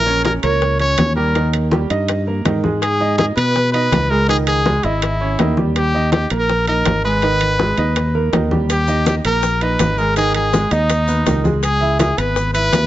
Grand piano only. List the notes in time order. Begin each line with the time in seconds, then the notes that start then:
0.06 C#4 C#5
0.43 A#3 A#4
0.80 C#4 C#5
1.16 G3 G4
1.35 D#3 D#4
1.72 G3 G4
1.90 D#4 D#5
2.27 A#3 A#4
2.45 D#3 D#4
2.63 G#3 G#4
3.00 D#4 D#5
3.37 B3 B4
3.74 D#4 D#5
4.11 G#3 G#4
4.28 D#3 D#4
4.66 G#3 G#4
4.84 E4 D#5
5.21 C#4 C#5
5.39 D#3 D#4
5.58 G3 G4
5.94 D#4 D#5
6.31 A#3 A#4
6.68 D#4 D#5
7.04 G#3 G#4
7.23 D#3 D#4
7.60 G#3 G#4
7.78 D#4 D#5
8.14 A#3 A#4
8.32 D#3 D#4
8.51 G3 G4
8.88 D#4 D#5
9.25 A#3 A#4
9.62 D#4 D#5
9.98 G#3 G#4
10.17 D#3 D#4
10.53 G#3 G#4
10.71 D#4 D#5
11.08 B3 B4
11.26 D#3 D#4
11.44 G#3 G#4
11.81 E4 E5
12.17 B3 B4
12.54 E4 E5